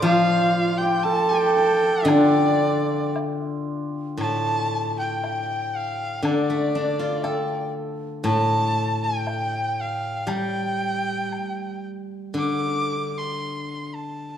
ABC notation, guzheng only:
X:1
M:2/4
L:1/16
Q:1/4=58
K:none
V:1 name="Guzheng" clef=bass
[A,,F,]8 | D,8 | A,,8 | D, A, D F A4 |
A,,8 | G,8 | D,8 |]